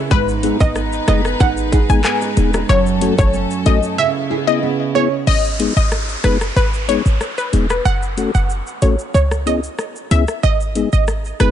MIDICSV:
0, 0, Header, 1, 8, 480
1, 0, Start_track
1, 0, Tempo, 645161
1, 83, Time_signature, 4, 2, 24, 8
1, 8563, End_track
2, 0, Start_track
2, 0, Title_t, "Synth pluck"
2, 0, Program_c, 0, 84
2, 83, Note_on_c, 0, 71, 111
2, 280, Note_off_c, 0, 71, 0
2, 451, Note_on_c, 0, 75, 81
2, 544, Note_off_c, 0, 75, 0
2, 805, Note_on_c, 0, 75, 84
2, 909, Note_off_c, 0, 75, 0
2, 1046, Note_on_c, 0, 78, 83
2, 1149, Note_off_c, 0, 78, 0
2, 1411, Note_on_c, 0, 80, 84
2, 1504, Note_off_c, 0, 80, 0
2, 1525, Note_on_c, 0, 80, 92
2, 1869, Note_off_c, 0, 80, 0
2, 2004, Note_on_c, 0, 73, 97
2, 2201, Note_off_c, 0, 73, 0
2, 2370, Note_on_c, 0, 73, 77
2, 2463, Note_off_c, 0, 73, 0
2, 2724, Note_on_c, 0, 75, 80
2, 2828, Note_off_c, 0, 75, 0
2, 2964, Note_on_c, 0, 76, 86
2, 3068, Note_off_c, 0, 76, 0
2, 3329, Note_on_c, 0, 75, 82
2, 3422, Note_off_c, 0, 75, 0
2, 3683, Note_on_c, 0, 73, 77
2, 3788, Note_off_c, 0, 73, 0
2, 3922, Note_on_c, 0, 75, 100
2, 4120, Note_off_c, 0, 75, 0
2, 4291, Note_on_c, 0, 75, 72
2, 4384, Note_off_c, 0, 75, 0
2, 4644, Note_on_c, 0, 71, 75
2, 4748, Note_off_c, 0, 71, 0
2, 4884, Note_on_c, 0, 71, 87
2, 4988, Note_off_c, 0, 71, 0
2, 5123, Note_on_c, 0, 73, 79
2, 5228, Note_off_c, 0, 73, 0
2, 5490, Note_on_c, 0, 71, 74
2, 5583, Note_off_c, 0, 71, 0
2, 5729, Note_on_c, 0, 71, 65
2, 5823, Note_off_c, 0, 71, 0
2, 5843, Note_on_c, 0, 78, 103
2, 6041, Note_off_c, 0, 78, 0
2, 6211, Note_on_c, 0, 78, 72
2, 6303, Note_off_c, 0, 78, 0
2, 6563, Note_on_c, 0, 73, 71
2, 6668, Note_off_c, 0, 73, 0
2, 6803, Note_on_c, 0, 73, 89
2, 6908, Note_off_c, 0, 73, 0
2, 7044, Note_on_c, 0, 75, 79
2, 7148, Note_off_c, 0, 75, 0
2, 7524, Note_on_c, 0, 76, 86
2, 7628, Note_off_c, 0, 76, 0
2, 7762, Note_on_c, 0, 75, 103
2, 7960, Note_off_c, 0, 75, 0
2, 8130, Note_on_c, 0, 75, 71
2, 8223, Note_off_c, 0, 75, 0
2, 8483, Note_on_c, 0, 71, 75
2, 8563, Note_off_c, 0, 71, 0
2, 8563, End_track
3, 0, Start_track
3, 0, Title_t, "Tonewheel organ"
3, 0, Program_c, 1, 16
3, 319, Note_on_c, 1, 56, 79
3, 321, Note_on_c, 1, 59, 74
3, 324, Note_on_c, 1, 63, 74
3, 326, Note_on_c, 1, 68, 87
3, 423, Note_off_c, 1, 56, 0
3, 424, Note_off_c, 1, 59, 0
3, 425, Note_off_c, 1, 63, 0
3, 426, Note_off_c, 1, 68, 0
3, 800, Note_on_c, 1, 56, 73
3, 802, Note_on_c, 1, 59, 72
3, 804, Note_on_c, 1, 63, 70
3, 806, Note_on_c, 1, 68, 82
3, 903, Note_off_c, 1, 56, 0
3, 904, Note_off_c, 1, 59, 0
3, 905, Note_off_c, 1, 63, 0
3, 906, Note_off_c, 1, 68, 0
3, 1279, Note_on_c, 1, 63, 75
3, 1286, Note_on_c, 1, 68, 83
3, 1332, Note_off_c, 1, 63, 0
3, 1335, Note_off_c, 1, 68, 0
3, 1406, Note_on_c, 1, 56, 75
3, 1408, Note_on_c, 1, 59, 66
3, 1410, Note_on_c, 1, 63, 65
3, 1413, Note_on_c, 1, 68, 78
3, 1498, Note_off_c, 1, 56, 0
3, 1499, Note_off_c, 1, 59, 0
3, 1500, Note_off_c, 1, 63, 0
3, 1502, Note_off_c, 1, 68, 0
3, 1759, Note_on_c, 1, 56, 75
3, 1761, Note_on_c, 1, 59, 66
3, 1764, Note_on_c, 1, 63, 71
3, 1766, Note_on_c, 1, 68, 81
3, 1863, Note_off_c, 1, 56, 0
3, 1864, Note_off_c, 1, 59, 0
3, 1865, Note_off_c, 1, 63, 0
3, 1866, Note_off_c, 1, 68, 0
3, 2240, Note_on_c, 1, 57, 77
3, 2242, Note_on_c, 1, 61, 73
3, 2244, Note_on_c, 1, 66, 73
3, 2247, Note_on_c, 1, 69, 86
3, 2343, Note_off_c, 1, 57, 0
3, 2344, Note_off_c, 1, 61, 0
3, 2345, Note_off_c, 1, 66, 0
3, 2346, Note_off_c, 1, 69, 0
3, 2718, Note_on_c, 1, 57, 74
3, 2721, Note_on_c, 1, 61, 68
3, 2723, Note_on_c, 1, 66, 66
3, 2726, Note_on_c, 1, 69, 81
3, 2822, Note_off_c, 1, 57, 0
3, 2823, Note_off_c, 1, 61, 0
3, 2825, Note_off_c, 1, 66, 0
3, 2826, Note_off_c, 1, 69, 0
3, 3199, Note_on_c, 1, 64, 75
3, 3207, Note_on_c, 1, 68, 81
3, 3252, Note_off_c, 1, 64, 0
3, 3256, Note_off_c, 1, 68, 0
3, 3327, Note_on_c, 1, 59, 70
3, 3330, Note_on_c, 1, 61, 64
3, 3332, Note_on_c, 1, 64, 64
3, 3334, Note_on_c, 1, 68, 75
3, 3419, Note_off_c, 1, 59, 0
3, 3420, Note_off_c, 1, 61, 0
3, 3421, Note_off_c, 1, 64, 0
3, 3422, Note_off_c, 1, 68, 0
3, 3680, Note_on_c, 1, 59, 72
3, 3682, Note_on_c, 1, 61, 69
3, 3684, Note_on_c, 1, 64, 67
3, 3686, Note_on_c, 1, 68, 82
3, 3783, Note_off_c, 1, 59, 0
3, 3784, Note_off_c, 1, 61, 0
3, 3785, Note_off_c, 1, 64, 0
3, 3786, Note_off_c, 1, 68, 0
3, 4159, Note_on_c, 1, 56, 75
3, 4161, Note_on_c, 1, 59, 71
3, 4163, Note_on_c, 1, 63, 69
3, 4166, Note_on_c, 1, 68, 83
3, 4263, Note_off_c, 1, 56, 0
3, 4264, Note_off_c, 1, 59, 0
3, 4265, Note_off_c, 1, 63, 0
3, 4266, Note_off_c, 1, 68, 0
3, 4639, Note_on_c, 1, 56, 70
3, 4641, Note_on_c, 1, 59, 64
3, 4643, Note_on_c, 1, 63, 62
3, 4646, Note_on_c, 1, 68, 79
3, 4743, Note_off_c, 1, 56, 0
3, 4744, Note_off_c, 1, 59, 0
3, 4745, Note_off_c, 1, 63, 0
3, 4746, Note_off_c, 1, 68, 0
3, 5120, Note_on_c, 1, 56, 74
3, 5122, Note_on_c, 1, 59, 67
3, 5124, Note_on_c, 1, 63, 68
3, 5127, Note_on_c, 1, 68, 79
3, 5223, Note_off_c, 1, 56, 0
3, 5224, Note_off_c, 1, 59, 0
3, 5225, Note_off_c, 1, 63, 0
3, 5227, Note_off_c, 1, 68, 0
3, 5598, Note_on_c, 1, 56, 72
3, 5601, Note_on_c, 1, 59, 63
3, 5603, Note_on_c, 1, 63, 66
3, 5606, Note_on_c, 1, 68, 82
3, 5702, Note_off_c, 1, 56, 0
3, 5703, Note_off_c, 1, 59, 0
3, 5705, Note_off_c, 1, 63, 0
3, 5706, Note_off_c, 1, 68, 0
3, 6078, Note_on_c, 1, 57, 77
3, 6080, Note_on_c, 1, 61, 71
3, 6083, Note_on_c, 1, 66, 66
3, 6085, Note_on_c, 1, 69, 80
3, 6182, Note_off_c, 1, 57, 0
3, 6183, Note_off_c, 1, 61, 0
3, 6184, Note_off_c, 1, 66, 0
3, 6186, Note_off_c, 1, 69, 0
3, 6560, Note_on_c, 1, 57, 72
3, 6561, Note_on_c, 1, 61, 64
3, 6564, Note_on_c, 1, 66, 67
3, 6566, Note_on_c, 1, 69, 77
3, 6663, Note_off_c, 1, 57, 0
3, 6664, Note_off_c, 1, 61, 0
3, 6665, Note_off_c, 1, 66, 0
3, 6666, Note_off_c, 1, 69, 0
3, 7038, Note_on_c, 1, 59, 72
3, 7040, Note_on_c, 1, 61, 68
3, 7043, Note_on_c, 1, 64, 67
3, 7045, Note_on_c, 1, 68, 82
3, 7142, Note_off_c, 1, 59, 0
3, 7143, Note_off_c, 1, 61, 0
3, 7144, Note_off_c, 1, 64, 0
3, 7146, Note_off_c, 1, 68, 0
3, 7520, Note_on_c, 1, 59, 73
3, 7522, Note_on_c, 1, 61, 69
3, 7524, Note_on_c, 1, 64, 64
3, 7526, Note_on_c, 1, 68, 77
3, 7623, Note_off_c, 1, 59, 0
3, 7624, Note_off_c, 1, 61, 0
3, 7625, Note_off_c, 1, 64, 0
3, 7626, Note_off_c, 1, 68, 0
3, 7999, Note_on_c, 1, 56, 77
3, 8001, Note_on_c, 1, 59, 70
3, 8003, Note_on_c, 1, 63, 72
3, 8005, Note_on_c, 1, 68, 83
3, 8102, Note_off_c, 1, 56, 0
3, 8104, Note_off_c, 1, 59, 0
3, 8105, Note_off_c, 1, 63, 0
3, 8106, Note_off_c, 1, 68, 0
3, 8479, Note_on_c, 1, 56, 70
3, 8482, Note_on_c, 1, 59, 65
3, 8483, Note_on_c, 1, 63, 67
3, 8486, Note_on_c, 1, 68, 79
3, 8563, Note_off_c, 1, 56, 0
3, 8563, Note_off_c, 1, 59, 0
3, 8563, Note_off_c, 1, 63, 0
3, 8563, Note_off_c, 1, 68, 0
3, 8563, End_track
4, 0, Start_track
4, 0, Title_t, "String section"
4, 0, Program_c, 2, 48
4, 83, Note_on_c, 2, 56, 85
4, 83, Note_on_c, 2, 71, 96
4, 84, Note_on_c, 2, 63, 77
4, 1984, Note_off_c, 2, 56, 0
4, 1984, Note_off_c, 2, 63, 0
4, 1984, Note_off_c, 2, 71, 0
4, 2005, Note_on_c, 2, 54, 78
4, 2005, Note_on_c, 2, 61, 74
4, 2005, Note_on_c, 2, 69, 91
4, 2954, Note_off_c, 2, 54, 0
4, 2954, Note_off_c, 2, 61, 0
4, 2954, Note_off_c, 2, 69, 0
4, 2964, Note_on_c, 2, 49, 79
4, 2964, Note_on_c, 2, 59, 73
4, 2964, Note_on_c, 2, 64, 86
4, 3914, Note_off_c, 2, 49, 0
4, 3914, Note_off_c, 2, 59, 0
4, 3914, Note_off_c, 2, 64, 0
4, 8563, End_track
5, 0, Start_track
5, 0, Title_t, "Nylon-string guitar"
5, 0, Program_c, 3, 24
5, 0, Note_on_c, 3, 49, 86
5, 0, Note_on_c, 3, 59, 65
5, 0, Note_on_c, 3, 61, 67
5, 0, Note_on_c, 3, 68, 69
5, 83, Note_on_c, 3, 44, 84
5, 133, Note_off_c, 3, 49, 0
5, 133, Note_off_c, 3, 61, 0
5, 320, Note_off_c, 3, 59, 0
5, 323, Note_on_c, 3, 59, 64
5, 563, Note_on_c, 3, 63, 66
5, 793, Note_off_c, 3, 59, 0
5, 802, Note_on_c, 3, 59, 62
5, 1034, Note_off_c, 3, 63, 0
5, 1042, Note_on_c, 3, 63, 65
5, 1280, Note_off_c, 3, 68, 0
5, 1283, Note_on_c, 3, 68, 73
5, 1513, Note_off_c, 3, 59, 0
5, 1522, Note_on_c, 3, 59, 62
5, 1754, Note_off_c, 3, 63, 0
5, 1763, Note_on_c, 3, 63, 62
5, 2000, Note_off_c, 3, 44, 0
5, 2003, Note_on_c, 3, 42, 83
5, 2053, Note_off_c, 3, 59, 0
5, 2054, Note_off_c, 3, 63, 0
5, 2054, Note_off_c, 3, 68, 0
5, 2244, Note_on_c, 3, 57, 63
5, 2484, Note_on_c, 3, 61, 66
5, 2715, Note_off_c, 3, 57, 0
5, 2724, Note_on_c, 3, 57, 62
5, 2963, Note_on_c, 3, 49, 84
5, 3014, Note_off_c, 3, 42, 0
5, 3014, Note_off_c, 3, 57, 0
5, 3014, Note_off_c, 3, 61, 0
5, 3203, Note_on_c, 3, 68, 67
5, 3443, Note_on_c, 3, 59, 64
5, 3683, Note_on_c, 3, 61, 64
5, 3974, Note_off_c, 3, 49, 0
5, 3974, Note_off_c, 3, 61, 0
5, 4346, Note_off_c, 3, 59, 0
5, 4346, Note_off_c, 3, 68, 0
5, 8563, End_track
6, 0, Start_track
6, 0, Title_t, "808-style bass"
6, 0, Program_c, 4, 38
6, 82, Note_on_c, 4, 32, 115
6, 389, Note_off_c, 4, 32, 0
6, 450, Note_on_c, 4, 32, 103
6, 745, Note_off_c, 4, 32, 0
6, 803, Note_on_c, 4, 30, 86
6, 1003, Note_off_c, 4, 30, 0
6, 1044, Note_on_c, 4, 32, 111
6, 1350, Note_off_c, 4, 32, 0
6, 1410, Note_on_c, 4, 32, 98
6, 1504, Note_off_c, 4, 32, 0
6, 1763, Note_on_c, 4, 28, 90
6, 1963, Note_off_c, 4, 28, 0
6, 2003, Note_on_c, 4, 30, 97
6, 2310, Note_off_c, 4, 30, 0
6, 2370, Note_on_c, 4, 30, 96
6, 2570, Note_off_c, 4, 30, 0
6, 2724, Note_on_c, 4, 33, 93
6, 2830, Note_off_c, 4, 33, 0
6, 3923, Note_on_c, 4, 32, 109
6, 4230, Note_off_c, 4, 32, 0
6, 4289, Note_on_c, 4, 32, 100
6, 4584, Note_off_c, 4, 32, 0
6, 4644, Note_on_c, 4, 30, 85
6, 4844, Note_off_c, 4, 30, 0
6, 4883, Note_on_c, 4, 32, 104
6, 5190, Note_off_c, 4, 32, 0
6, 5250, Note_on_c, 4, 32, 97
6, 5344, Note_off_c, 4, 32, 0
6, 5603, Note_on_c, 4, 28, 92
6, 5803, Note_off_c, 4, 28, 0
6, 5842, Note_on_c, 4, 30, 101
6, 6149, Note_off_c, 4, 30, 0
6, 6210, Note_on_c, 4, 30, 91
6, 6410, Note_off_c, 4, 30, 0
6, 6563, Note_on_c, 4, 33, 91
6, 6669, Note_off_c, 4, 33, 0
6, 6803, Note_on_c, 4, 37, 101
6, 7204, Note_off_c, 4, 37, 0
6, 7522, Note_on_c, 4, 37, 93
6, 7629, Note_off_c, 4, 37, 0
6, 7764, Note_on_c, 4, 32, 113
6, 8070, Note_off_c, 4, 32, 0
6, 8131, Note_on_c, 4, 32, 104
6, 8425, Note_off_c, 4, 32, 0
6, 8484, Note_on_c, 4, 30, 84
6, 8563, Note_off_c, 4, 30, 0
6, 8563, End_track
7, 0, Start_track
7, 0, Title_t, "Downlifter"
7, 0, Program_c, 5, 103
7, 3923, Note_on_c, 5, 60, 81
7, 7763, Note_off_c, 5, 60, 0
7, 8563, End_track
8, 0, Start_track
8, 0, Title_t, "Drums"
8, 82, Note_on_c, 9, 36, 101
8, 82, Note_on_c, 9, 82, 57
8, 83, Note_on_c, 9, 60, 75
8, 156, Note_off_c, 9, 36, 0
8, 156, Note_off_c, 9, 82, 0
8, 158, Note_off_c, 9, 60, 0
8, 211, Note_on_c, 9, 82, 53
8, 286, Note_off_c, 9, 82, 0
8, 322, Note_on_c, 9, 42, 87
8, 322, Note_on_c, 9, 82, 60
8, 396, Note_off_c, 9, 42, 0
8, 396, Note_off_c, 9, 82, 0
8, 450, Note_on_c, 9, 36, 95
8, 450, Note_on_c, 9, 82, 79
8, 524, Note_off_c, 9, 36, 0
8, 525, Note_off_c, 9, 82, 0
8, 562, Note_on_c, 9, 82, 72
8, 563, Note_on_c, 9, 37, 94
8, 636, Note_off_c, 9, 82, 0
8, 637, Note_off_c, 9, 37, 0
8, 689, Note_on_c, 9, 82, 52
8, 763, Note_off_c, 9, 82, 0
8, 801, Note_on_c, 9, 37, 104
8, 802, Note_on_c, 9, 42, 68
8, 802, Note_on_c, 9, 61, 67
8, 802, Note_on_c, 9, 82, 47
8, 876, Note_off_c, 9, 37, 0
8, 876, Note_off_c, 9, 42, 0
8, 876, Note_off_c, 9, 82, 0
8, 877, Note_off_c, 9, 61, 0
8, 929, Note_on_c, 9, 82, 74
8, 930, Note_on_c, 9, 37, 97
8, 1003, Note_off_c, 9, 82, 0
8, 1004, Note_off_c, 9, 37, 0
8, 1043, Note_on_c, 9, 60, 71
8, 1044, Note_on_c, 9, 36, 95
8, 1044, Note_on_c, 9, 82, 77
8, 1117, Note_off_c, 9, 60, 0
8, 1118, Note_off_c, 9, 36, 0
8, 1118, Note_off_c, 9, 82, 0
8, 1170, Note_on_c, 9, 82, 59
8, 1244, Note_off_c, 9, 82, 0
8, 1283, Note_on_c, 9, 36, 96
8, 1284, Note_on_c, 9, 42, 68
8, 1284, Note_on_c, 9, 82, 48
8, 1357, Note_off_c, 9, 36, 0
8, 1359, Note_off_c, 9, 42, 0
8, 1359, Note_off_c, 9, 82, 0
8, 1410, Note_on_c, 9, 82, 87
8, 1484, Note_off_c, 9, 82, 0
8, 1521, Note_on_c, 9, 37, 100
8, 1521, Note_on_c, 9, 39, 97
8, 1521, Note_on_c, 9, 82, 68
8, 1595, Note_off_c, 9, 37, 0
8, 1595, Note_off_c, 9, 39, 0
8, 1595, Note_off_c, 9, 82, 0
8, 1648, Note_on_c, 9, 82, 56
8, 1650, Note_on_c, 9, 60, 53
8, 1723, Note_off_c, 9, 82, 0
8, 1724, Note_off_c, 9, 60, 0
8, 1763, Note_on_c, 9, 42, 81
8, 1763, Note_on_c, 9, 61, 74
8, 1763, Note_on_c, 9, 82, 59
8, 1837, Note_off_c, 9, 42, 0
8, 1837, Note_off_c, 9, 61, 0
8, 1837, Note_off_c, 9, 82, 0
8, 1888, Note_on_c, 9, 82, 80
8, 1891, Note_on_c, 9, 37, 97
8, 1891, Note_on_c, 9, 60, 74
8, 1962, Note_off_c, 9, 82, 0
8, 1965, Note_off_c, 9, 37, 0
8, 1966, Note_off_c, 9, 60, 0
8, 2003, Note_on_c, 9, 82, 58
8, 2004, Note_on_c, 9, 60, 76
8, 2078, Note_off_c, 9, 60, 0
8, 2078, Note_off_c, 9, 82, 0
8, 2132, Note_on_c, 9, 82, 56
8, 2206, Note_off_c, 9, 82, 0
8, 2243, Note_on_c, 9, 42, 85
8, 2243, Note_on_c, 9, 82, 60
8, 2317, Note_off_c, 9, 42, 0
8, 2317, Note_off_c, 9, 82, 0
8, 2370, Note_on_c, 9, 36, 99
8, 2370, Note_on_c, 9, 82, 81
8, 2444, Note_off_c, 9, 36, 0
8, 2444, Note_off_c, 9, 82, 0
8, 2482, Note_on_c, 9, 82, 74
8, 2556, Note_off_c, 9, 82, 0
8, 2609, Note_on_c, 9, 82, 54
8, 2683, Note_off_c, 9, 82, 0
8, 2722, Note_on_c, 9, 42, 64
8, 2722, Note_on_c, 9, 61, 68
8, 2722, Note_on_c, 9, 82, 49
8, 2797, Note_off_c, 9, 42, 0
8, 2797, Note_off_c, 9, 61, 0
8, 2797, Note_off_c, 9, 82, 0
8, 2849, Note_on_c, 9, 82, 77
8, 2924, Note_off_c, 9, 82, 0
8, 3924, Note_on_c, 9, 49, 87
8, 3924, Note_on_c, 9, 82, 59
8, 3998, Note_off_c, 9, 49, 0
8, 3998, Note_off_c, 9, 82, 0
8, 4052, Note_on_c, 9, 82, 50
8, 4127, Note_off_c, 9, 82, 0
8, 4164, Note_on_c, 9, 42, 80
8, 4164, Note_on_c, 9, 82, 57
8, 4238, Note_off_c, 9, 42, 0
8, 4238, Note_off_c, 9, 82, 0
8, 4292, Note_on_c, 9, 82, 77
8, 4366, Note_off_c, 9, 82, 0
8, 4402, Note_on_c, 9, 82, 72
8, 4403, Note_on_c, 9, 37, 93
8, 4477, Note_off_c, 9, 82, 0
8, 4478, Note_off_c, 9, 37, 0
8, 4530, Note_on_c, 9, 82, 52
8, 4605, Note_off_c, 9, 82, 0
8, 4642, Note_on_c, 9, 37, 100
8, 4643, Note_on_c, 9, 42, 64
8, 4643, Note_on_c, 9, 82, 46
8, 4717, Note_off_c, 9, 37, 0
8, 4717, Note_off_c, 9, 42, 0
8, 4717, Note_off_c, 9, 82, 0
8, 4770, Note_on_c, 9, 82, 74
8, 4771, Note_on_c, 9, 37, 98
8, 4844, Note_off_c, 9, 82, 0
8, 4845, Note_off_c, 9, 37, 0
8, 4885, Note_on_c, 9, 82, 72
8, 4960, Note_off_c, 9, 82, 0
8, 5012, Note_on_c, 9, 82, 56
8, 5086, Note_off_c, 9, 82, 0
8, 5125, Note_on_c, 9, 42, 66
8, 5125, Note_on_c, 9, 82, 48
8, 5200, Note_off_c, 9, 42, 0
8, 5200, Note_off_c, 9, 82, 0
8, 5251, Note_on_c, 9, 82, 88
8, 5325, Note_off_c, 9, 82, 0
8, 5363, Note_on_c, 9, 37, 92
8, 5363, Note_on_c, 9, 82, 65
8, 5437, Note_off_c, 9, 37, 0
8, 5437, Note_off_c, 9, 82, 0
8, 5490, Note_on_c, 9, 82, 58
8, 5564, Note_off_c, 9, 82, 0
8, 5604, Note_on_c, 9, 42, 76
8, 5604, Note_on_c, 9, 82, 54
8, 5678, Note_off_c, 9, 42, 0
8, 5678, Note_off_c, 9, 82, 0
8, 5728, Note_on_c, 9, 82, 78
8, 5731, Note_on_c, 9, 37, 96
8, 5802, Note_off_c, 9, 82, 0
8, 5805, Note_off_c, 9, 37, 0
8, 5843, Note_on_c, 9, 82, 58
8, 5917, Note_off_c, 9, 82, 0
8, 5972, Note_on_c, 9, 82, 50
8, 6046, Note_off_c, 9, 82, 0
8, 6083, Note_on_c, 9, 42, 79
8, 6083, Note_on_c, 9, 82, 57
8, 6157, Note_off_c, 9, 42, 0
8, 6157, Note_off_c, 9, 82, 0
8, 6211, Note_on_c, 9, 82, 72
8, 6285, Note_off_c, 9, 82, 0
8, 6322, Note_on_c, 9, 82, 73
8, 6397, Note_off_c, 9, 82, 0
8, 6449, Note_on_c, 9, 82, 50
8, 6524, Note_off_c, 9, 82, 0
8, 6563, Note_on_c, 9, 42, 66
8, 6563, Note_on_c, 9, 82, 47
8, 6637, Note_off_c, 9, 42, 0
8, 6637, Note_off_c, 9, 82, 0
8, 6689, Note_on_c, 9, 82, 75
8, 6763, Note_off_c, 9, 82, 0
8, 6805, Note_on_c, 9, 82, 70
8, 6879, Note_off_c, 9, 82, 0
8, 6930, Note_on_c, 9, 37, 95
8, 6931, Note_on_c, 9, 82, 56
8, 7004, Note_off_c, 9, 37, 0
8, 7006, Note_off_c, 9, 82, 0
8, 7045, Note_on_c, 9, 42, 64
8, 7045, Note_on_c, 9, 82, 46
8, 7120, Note_off_c, 9, 42, 0
8, 7120, Note_off_c, 9, 82, 0
8, 7170, Note_on_c, 9, 82, 88
8, 7244, Note_off_c, 9, 82, 0
8, 7281, Note_on_c, 9, 37, 94
8, 7281, Note_on_c, 9, 82, 64
8, 7355, Note_off_c, 9, 37, 0
8, 7355, Note_off_c, 9, 82, 0
8, 7409, Note_on_c, 9, 82, 57
8, 7484, Note_off_c, 9, 82, 0
8, 7523, Note_on_c, 9, 42, 74
8, 7523, Note_on_c, 9, 82, 56
8, 7598, Note_off_c, 9, 42, 0
8, 7598, Note_off_c, 9, 82, 0
8, 7648, Note_on_c, 9, 82, 76
8, 7650, Note_on_c, 9, 37, 95
8, 7722, Note_off_c, 9, 82, 0
8, 7725, Note_off_c, 9, 37, 0
8, 7762, Note_on_c, 9, 82, 56
8, 7837, Note_off_c, 9, 82, 0
8, 7891, Note_on_c, 9, 82, 51
8, 7965, Note_off_c, 9, 82, 0
8, 8002, Note_on_c, 9, 42, 83
8, 8002, Note_on_c, 9, 82, 58
8, 8076, Note_off_c, 9, 42, 0
8, 8076, Note_off_c, 9, 82, 0
8, 8129, Note_on_c, 9, 82, 76
8, 8203, Note_off_c, 9, 82, 0
8, 8242, Note_on_c, 9, 82, 69
8, 8243, Note_on_c, 9, 37, 94
8, 8316, Note_off_c, 9, 82, 0
8, 8317, Note_off_c, 9, 37, 0
8, 8369, Note_on_c, 9, 82, 52
8, 8443, Note_off_c, 9, 82, 0
8, 8481, Note_on_c, 9, 37, 98
8, 8482, Note_on_c, 9, 42, 64
8, 8482, Note_on_c, 9, 82, 45
8, 8556, Note_off_c, 9, 37, 0
8, 8556, Note_off_c, 9, 42, 0
8, 8556, Note_off_c, 9, 82, 0
8, 8563, End_track
0, 0, End_of_file